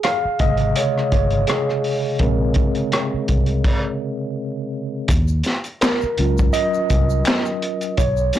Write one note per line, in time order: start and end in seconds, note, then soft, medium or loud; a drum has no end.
0.00 1.48 G#4 medium
0.00 0.41 F5 loud
0.00 closed hi-hat medium
0.05 cross-stick loud
0.25 muted fingered electric bass stroke soft
0.39 0.72 G#1 medium
0.39 3.26 C3 medium
0.39 2.20 C#3 medium
0.39 2.21 G#3 soft
0.39 0.73 D#5 medium
0.39 kick medium
0.39 closed hi-hat medium
0.57 closed hi-hat soft
0.76 1.11 C#5 medium
0.76 closed hi-hat medium
0.98 cross-stick soft
1.12 1.44 G1 medium
1.12 1.49 C#5 medium
1.12 kick medium
1.12 cross-stick soft
1.12 closed hi-hat medium
1.30 closed hi-hat soft
1.47 2.22 G#4 medium
1.47 cross-stick loud
1.47 closed hi-hat medium
1.69 cross-stick soft
1.84 open hi-hat soft
2.19 2.52 A#1 loud
2.19 3.25 C#3 soft
2.19 3.25 G#3 soft
2.19 3.26 C4 medium
2.19 4.33 A#4 medium
2.19 kick medium
2.19 closed hi-hat medium
2.54 kick medium
2.54 closed hi-hat soft
2.75 closed hi-hat soft
2.92 cross-stick loud
2.92 closed hi-hat medium
3.14 muted fingered electric bass stroke soft
3.28 3.61 C2 medium
3.28 kick medium
3.28 closed hi-hat medium
3.46 closed hi-hat soft
3.64 kick medium
3.64 crash medium
5.08 5.41 D#2 loud
5.08 kick medium
5.08 closed hi-hat medium
5.08 shaker medium
5.28 shaker soft
5.43 snare soft
5.43 closed hi-hat medium
5.43 shaker soft
5.64 closed hi-hat soft
5.64 shaker soft
5.81 6.56 A#4 medium
5.81 finger snap medium
5.81 snare loud
5.81 clap medium
5.81 closed hi-hat medium
5.81 shaker medium
6.01 muted fingered electric bass stroke soft
6.01 shaker soft
6.18 6.50 C#2 medium
6.18 7.95 F#3 medium
6.18 7.95 C#4 soft
6.18 7.95 F4 medium
6.18 closed hi-hat medium
6.38 kick medium
6.38 shaker soft
6.53 8.02 D#5 loud
6.53 closed hi-hat medium
6.53 shaker medium
6.74 shaker soft
6.90 7.22 C2 medium
6.90 kick medium
6.90 closed hi-hat medium
6.90 shaker soft
7.10 shaker soft
7.25 finger snap medium
7.25 snare loud
7.25 clap medium
7.25 closed hi-hat medium
7.25 shaker medium
7.45 shaker soft
7.62 closed hi-hat medium
7.81 closed hi-hat soft
7.81 shaker soft
7.97 8.30 B1 loud
7.97 8.39 C#5 medium
7.97 kick medium
7.97 closed hi-hat medium
7.97 shaker medium
8.17 shaker soft
8.33 8.39 A3 soft
8.33 8.39 C#4 soft
8.33 snare soft
8.33 closed hi-hat medium
8.33 shaker soft